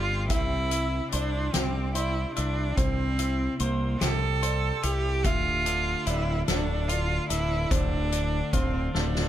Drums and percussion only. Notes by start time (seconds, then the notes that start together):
0.30 kick, closed hi-hat
0.71 closed hi-hat
1.12 closed hi-hat
1.54 snare, closed hi-hat
1.95 closed hi-hat
2.36 closed hi-hat
2.77 kick, closed hi-hat
3.19 closed hi-hat
3.60 closed hi-hat
4.01 snare, closed hi-hat
4.43 closed hi-hat
4.83 closed hi-hat
5.24 kick, closed hi-hat
5.66 closed hi-hat
6.07 closed hi-hat
6.48 snare, closed hi-hat
6.89 closed hi-hat
7.30 closed hi-hat
7.71 kick, closed hi-hat
8.12 closed hi-hat
8.53 kick, closed hi-hat
8.95 snare
9.15 snare